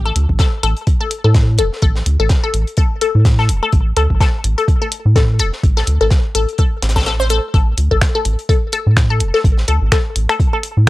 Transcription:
Already playing: A1
0.05 A4
0.16 D2, closed hi-hat
0.29 A1, kick
0.39 A4, kick, snare, closed hi-hat
0.63 A1 A4, closed hi-hat
0.77 closed hi-hat
0.87 kick, closed hi-hat
1.01 A4
1.11 closed hi-hat
1.24 A2 A4
1.35 kick, snare, closed hi-hat
1.58 E1 A4, closed hi-hat
1.73 snare
1.82 A1 A4, kick, closed hi-hat
1.96 snare
2.06 D2, closed hi-hat
2.20 A1 A4
2.29 kick, snare, closed hi-hat
2.44 A4
2.54 A1, closed hi-hat
2.67 closed hi-hat
2.77 A4, kick, closed hi-hat
3.01 A4, closed hi-hat
3.15 A2
3.25 kick, snare, closed hi-hat
3.39 A4, snare
3.49 E1, closed hi-hat
3.63 A4
3.73 A1, kick, closed hi-hat
3.97 D2 A4, closed hi-hat
4.10 A1, kick
4.21 A4, kick, snare, closed hi-hat
4.44 A1, closed hi-hat
4.58 A4, closed hi-hat
4.68 kick, closed hi-hat
4.82 A4
4.92 closed hi-hat
5.05 A2
5.16 A4, kick, snare, closed hi-hat
5.39 E1 A4, closed hi-hat
5.53 snare
5.63 A1, kick, closed hi-hat
5.77 A4, snare
5.87 D2, closed hi-hat
6.01 A1 A4
6.10 kick, snare, closed hi-hat
6.35 A1 A4, closed hi-hat
6.49 closed hi-hat
6.58 A4, kick, closed hi-hat
6.82 A1, snare, closed hi-hat
6.89 snare, closed hi-hat
6.96 A4, kick, snare, closed hi-hat
7.01 snare, closed hi-hat
7.06 A4, snare, closed hi-hat
7.20 C5, snare
7.29 A4, closed hi-hat
7.54 A1 A4, kick, closed hi-hat
7.77 D2, closed hi-hat
7.91 A1 A4, kick
8.01 finger snap, kick, snare, closed hi-hat
8.15 A4
8.25 A1, closed hi-hat
8.39 closed hi-hat
8.49 A4, kick, closed hi-hat
8.72 A4, closed hi-hat
8.87 A2
8.97 finger snap, kick, snare, closed hi-hat
9.10 A4
9.20 E1, closed hi-hat
9.34 A4, snare
9.44 A1, kick, closed hi-hat
9.58 snare
9.68 D2 A4, closed hi-hat
9.82 A1
9.92 A4, finger snap, kick, snare, closed hi-hat
10.16 A1, closed hi-hat
10.29 A4, finger snap, closed hi-hat
10.40 kick, closed hi-hat
10.53 A4
10.63 closed hi-hat
10.77 A2

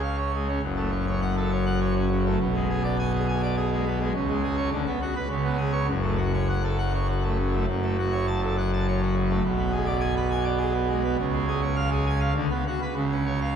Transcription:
Already playing: C#2 C#3
0.03 F5
0.18 C#5
0.35 G#3
0.49 C#4
0.63 F#1 F#2
0.77 A3
0.92 C#4
1.07 C#5
1.21 F#5
1.37 A4
1.51 C#5
1.66 F#5
1.81 C#5
1.96 C#4
2.11 C#3
2.26 A3
2.40 B1 B2
2.55 G#3
2.70 G#4
2.84 D5
2.99 G#5
3.14 G#4
3.28 G#5
3.43 D5
3.57 G#4
3.72 G#3
3.87 B3
4.01 G#3
4.15 C#2 C#3
4.29 G#3
4.43 G#4
4.57 C#5
4.72 D2 D3
4.87 B3
5.02 F#4
5.15 B4
5.29 C#2 C#3
5.44 B3
5.58 G#4
5.72 C#5
5.89 F#1 F#2
6.03 A3
6.18 F#4
6.34 C#5
6.49 F#5
6.64 A4
6.78 F#5
6.94 C#5
7.08 F#4
7.23 A3
7.38 C#3
7.52 A3
7.67 F#1 F#2
7.83 A3
7.99 F#4
8.12 C#5
8.27 A5
8.42 A4
8.58 F#5
8.73 A5
8.88 C#5
9.02 F#4
9.15 C#3
9.30 A3
9.44 B1 B2
9.59 B3
9.72 G#4
9.86 D5
10.01 G#5
10.17 B4
10.31 G#5
10.44 D5
10.59 G#4
10.74 B3
10.88 G#3
11.04 B3
11.18 C#2 C#3
11.33 G#3
11.48 G#4
11.62 C#5
11.76 F5
11.91 G#4
12.06 G#5
12.21 F5
12.35 D2 D3
12.50 B3
12.67 F#4
12.82 B4
12.96 C#2 C#3
13.12 C#4
13.26 C#5
13.42 F5

